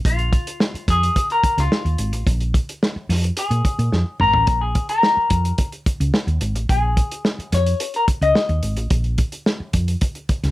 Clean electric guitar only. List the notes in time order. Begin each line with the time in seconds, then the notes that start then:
0.06 F4
0.90 G#4
1.32 A#4
1.60 F4
3.39 G#4
4.21 A#4
4.61 G#4
4.89 A#4
6.70 G#4
7.54 C#5
7.96 A#4
8.23 D#5